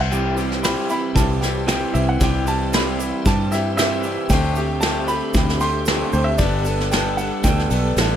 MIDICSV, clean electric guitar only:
0, 0, Header, 1, 2, 480
1, 0, Start_track
1, 0, Tempo, 524934
1, 99, Time_signature, 4, 2, 24, 8
1, 7464, End_track
2, 0, Start_track
2, 0, Title_t, "Clean electric guitar"
2, 0, Program_c, 0, 27
2, 96, Note_on_c, 0, 48, 87
2, 104, Note_on_c, 0, 52, 90
2, 106, Note_on_c, 0, 55, 91
2, 111, Note_on_c, 0, 60, 94
2, 113, Note_on_c, 0, 67, 95
2, 330, Note_off_c, 0, 67, 0
2, 334, Note_on_c, 0, 67, 76
2, 344, Note_off_c, 0, 60, 0
2, 347, Note_on_c, 0, 60, 65
2, 353, Note_off_c, 0, 55, 0
2, 356, Note_on_c, 0, 55, 58
2, 572, Note_off_c, 0, 48, 0
2, 576, Note_on_c, 0, 48, 89
2, 580, Note_off_c, 0, 55, 0
2, 582, Note_off_c, 0, 52, 0
2, 584, Note_on_c, 0, 55, 110
2, 586, Note_on_c, 0, 52, 104
2, 588, Note_off_c, 0, 60, 0
2, 592, Note_off_c, 0, 67, 0
2, 592, Note_on_c, 0, 60, 101
2, 595, Note_on_c, 0, 67, 120
2, 812, Note_off_c, 0, 67, 0
2, 815, Note_on_c, 0, 67, 72
2, 823, Note_off_c, 0, 60, 0
2, 827, Note_on_c, 0, 60, 64
2, 829, Note_off_c, 0, 55, 0
2, 833, Note_on_c, 0, 55, 55
2, 1043, Note_off_c, 0, 52, 0
2, 1047, Note_on_c, 0, 52, 86
2, 1048, Note_off_c, 0, 60, 0
2, 1049, Note_off_c, 0, 55, 0
2, 1052, Note_on_c, 0, 60, 76
2, 1053, Note_on_c, 0, 55, 86
2, 1059, Note_off_c, 0, 67, 0
2, 1062, Note_on_c, 0, 67, 87
2, 1286, Note_off_c, 0, 67, 0
2, 1290, Note_on_c, 0, 67, 65
2, 1296, Note_off_c, 0, 60, 0
2, 1300, Note_on_c, 0, 60, 64
2, 1310, Note_off_c, 0, 55, 0
2, 1313, Note_on_c, 0, 55, 65
2, 1515, Note_off_c, 0, 48, 0
2, 1515, Note_off_c, 0, 52, 0
2, 1519, Note_on_c, 0, 48, 93
2, 1526, Note_on_c, 0, 52, 100
2, 1530, Note_off_c, 0, 60, 0
2, 1531, Note_off_c, 0, 55, 0
2, 1534, Note_on_c, 0, 60, 115
2, 1535, Note_on_c, 0, 55, 107
2, 1536, Note_off_c, 0, 67, 0
2, 1540, Note_on_c, 0, 67, 104
2, 1765, Note_off_c, 0, 67, 0
2, 1769, Note_on_c, 0, 67, 82
2, 1776, Note_off_c, 0, 60, 0
2, 1780, Note_on_c, 0, 60, 70
2, 1782, Note_off_c, 0, 55, 0
2, 1785, Note_on_c, 0, 55, 58
2, 1994, Note_off_c, 0, 48, 0
2, 2002, Note_off_c, 0, 52, 0
2, 2005, Note_on_c, 0, 48, 87
2, 2010, Note_off_c, 0, 55, 0
2, 2013, Note_off_c, 0, 60, 0
2, 2013, Note_on_c, 0, 52, 99
2, 2013, Note_on_c, 0, 55, 91
2, 2016, Note_on_c, 0, 60, 94
2, 2020, Note_off_c, 0, 67, 0
2, 2024, Note_on_c, 0, 67, 103
2, 2241, Note_off_c, 0, 67, 0
2, 2244, Note_on_c, 0, 67, 79
2, 2253, Note_off_c, 0, 60, 0
2, 2257, Note_off_c, 0, 55, 0
2, 2257, Note_on_c, 0, 60, 69
2, 2261, Note_on_c, 0, 55, 67
2, 2482, Note_off_c, 0, 48, 0
2, 2488, Note_off_c, 0, 52, 0
2, 2493, Note_on_c, 0, 48, 97
2, 2499, Note_on_c, 0, 52, 93
2, 2500, Note_off_c, 0, 60, 0
2, 2503, Note_off_c, 0, 55, 0
2, 2503, Note_on_c, 0, 60, 106
2, 2506, Note_off_c, 0, 67, 0
2, 2507, Note_on_c, 0, 55, 103
2, 2510, Note_on_c, 0, 67, 120
2, 2727, Note_off_c, 0, 67, 0
2, 2731, Note_on_c, 0, 67, 70
2, 2738, Note_off_c, 0, 60, 0
2, 2742, Note_on_c, 0, 60, 65
2, 2745, Note_off_c, 0, 55, 0
2, 2749, Note_on_c, 0, 55, 60
2, 2965, Note_off_c, 0, 52, 0
2, 2976, Note_off_c, 0, 48, 0
2, 2976, Note_on_c, 0, 52, 78
2, 2978, Note_off_c, 0, 55, 0
2, 2978, Note_off_c, 0, 60, 0
2, 2981, Note_on_c, 0, 55, 83
2, 2988, Note_off_c, 0, 67, 0
2, 2989, Note_on_c, 0, 60, 84
2, 2992, Note_on_c, 0, 67, 87
2, 3204, Note_off_c, 0, 67, 0
2, 3208, Note_on_c, 0, 67, 67
2, 3210, Note_off_c, 0, 60, 0
2, 3221, Note_on_c, 0, 60, 65
2, 3226, Note_off_c, 0, 55, 0
2, 3229, Note_on_c, 0, 55, 60
2, 3437, Note_off_c, 0, 52, 0
2, 3440, Note_on_c, 0, 48, 102
2, 3447, Note_off_c, 0, 55, 0
2, 3447, Note_off_c, 0, 60, 0
2, 3448, Note_on_c, 0, 52, 99
2, 3450, Note_on_c, 0, 55, 109
2, 3458, Note_off_c, 0, 67, 0
2, 3458, Note_on_c, 0, 60, 106
2, 3461, Note_on_c, 0, 67, 112
2, 3690, Note_off_c, 0, 67, 0
2, 3694, Note_on_c, 0, 67, 80
2, 3699, Note_off_c, 0, 60, 0
2, 3709, Note_off_c, 0, 55, 0
2, 3710, Note_on_c, 0, 60, 70
2, 3712, Note_on_c, 0, 55, 61
2, 3915, Note_off_c, 0, 48, 0
2, 3919, Note_off_c, 0, 52, 0
2, 3930, Note_off_c, 0, 60, 0
2, 3940, Note_on_c, 0, 50, 84
2, 3941, Note_off_c, 0, 55, 0
2, 3944, Note_on_c, 0, 57, 91
2, 3950, Note_off_c, 0, 67, 0
2, 3953, Note_on_c, 0, 67, 83
2, 3955, Note_on_c, 0, 60, 99
2, 4173, Note_off_c, 0, 67, 0
2, 4174, Note_off_c, 0, 60, 0
2, 4177, Note_on_c, 0, 67, 71
2, 4185, Note_on_c, 0, 60, 73
2, 4188, Note_off_c, 0, 57, 0
2, 4192, Note_on_c, 0, 57, 68
2, 4399, Note_off_c, 0, 50, 0
2, 4410, Note_on_c, 0, 50, 102
2, 4411, Note_off_c, 0, 57, 0
2, 4414, Note_off_c, 0, 60, 0
2, 4415, Note_on_c, 0, 57, 92
2, 4425, Note_on_c, 0, 60, 100
2, 4430, Note_off_c, 0, 67, 0
2, 4434, Note_on_c, 0, 67, 104
2, 4660, Note_off_c, 0, 60, 0
2, 4660, Note_off_c, 0, 67, 0
2, 4663, Note_on_c, 0, 67, 67
2, 4669, Note_off_c, 0, 57, 0
2, 4671, Note_on_c, 0, 60, 61
2, 4673, Note_on_c, 0, 57, 68
2, 4882, Note_off_c, 0, 50, 0
2, 4891, Note_off_c, 0, 57, 0
2, 4893, Note_on_c, 0, 50, 75
2, 4901, Note_off_c, 0, 60, 0
2, 4902, Note_on_c, 0, 57, 83
2, 4908, Note_off_c, 0, 67, 0
2, 4911, Note_on_c, 0, 67, 82
2, 4912, Note_on_c, 0, 60, 79
2, 5126, Note_off_c, 0, 67, 0
2, 5129, Note_off_c, 0, 60, 0
2, 5130, Note_on_c, 0, 67, 70
2, 5136, Note_off_c, 0, 57, 0
2, 5140, Note_on_c, 0, 60, 59
2, 5147, Note_on_c, 0, 57, 59
2, 5369, Note_off_c, 0, 50, 0
2, 5377, Note_off_c, 0, 57, 0
2, 5380, Note_off_c, 0, 60, 0
2, 5380, Note_on_c, 0, 50, 110
2, 5388, Note_on_c, 0, 57, 112
2, 5391, Note_on_c, 0, 60, 109
2, 5398, Note_off_c, 0, 67, 0
2, 5401, Note_on_c, 0, 67, 117
2, 5619, Note_off_c, 0, 67, 0
2, 5623, Note_on_c, 0, 67, 76
2, 5625, Note_off_c, 0, 60, 0
2, 5633, Note_off_c, 0, 57, 0
2, 5636, Note_on_c, 0, 60, 61
2, 5644, Note_on_c, 0, 57, 68
2, 5843, Note_off_c, 0, 50, 0
2, 5851, Note_off_c, 0, 60, 0
2, 5855, Note_off_c, 0, 57, 0
2, 5863, Note_on_c, 0, 55, 86
2, 5871, Note_on_c, 0, 59, 93
2, 5876, Note_off_c, 0, 67, 0
2, 5876, Note_on_c, 0, 62, 87
2, 5879, Note_on_c, 0, 69, 96
2, 6084, Note_off_c, 0, 69, 0
2, 6094, Note_off_c, 0, 62, 0
2, 6095, Note_on_c, 0, 69, 81
2, 6103, Note_off_c, 0, 59, 0
2, 6105, Note_on_c, 0, 62, 72
2, 6114, Note_on_c, 0, 59, 64
2, 6320, Note_off_c, 0, 55, 0
2, 6326, Note_off_c, 0, 59, 0
2, 6331, Note_on_c, 0, 55, 104
2, 6333, Note_off_c, 0, 62, 0
2, 6337, Note_off_c, 0, 69, 0
2, 6337, Note_on_c, 0, 59, 93
2, 6344, Note_on_c, 0, 62, 100
2, 6348, Note_on_c, 0, 69, 104
2, 6572, Note_off_c, 0, 69, 0
2, 6580, Note_off_c, 0, 62, 0
2, 6583, Note_on_c, 0, 69, 68
2, 6588, Note_off_c, 0, 59, 0
2, 6591, Note_on_c, 0, 62, 65
2, 6599, Note_on_c, 0, 59, 58
2, 6804, Note_off_c, 0, 55, 0
2, 6812, Note_off_c, 0, 59, 0
2, 6814, Note_off_c, 0, 62, 0
2, 6815, Note_on_c, 0, 55, 86
2, 6823, Note_off_c, 0, 69, 0
2, 6823, Note_on_c, 0, 59, 83
2, 6825, Note_on_c, 0, 62, 82
2, 6834, Note_on_c, 0, 69, 88
2, 7039, Note_off_c, 0, 69, 0
2, 7050, Note_on_c, 0, 69, 72
2, 7051, Note_off_c, 0, 62, 0
2, 7056, Note_off_c, 0, 59, 0
2, 7062, Note_on_c, 0, 62, 62
2, 7066, Note_on_c, 0, 59, 56
2, 7290, Note_off_c, 0, 55, 0
2, 7298, Note_off_c, 0, 59, 0
2, 7298, Note_off_c, 0, 62, 0
2, 7301, Note_on_c, 0, 55, 98
2, 7309, Note_on_c, 0, 59, 106
2, 7309, Note_on_c, 0, 62, 102
2, 7313, Note_off_c, 0, 69, 0
2, 7324, Note_on_c, 0, 69, 114
2, 7464, Note_off_c, 0, 55, 0
2, 7464, Note_off_c, 0, 59, 0
2, 7464, Note_off_c, 0, 62, 0
2, 7464, Note_off_c, 0, 69, 0
2, 7464, End_track
0, 0, End_of_file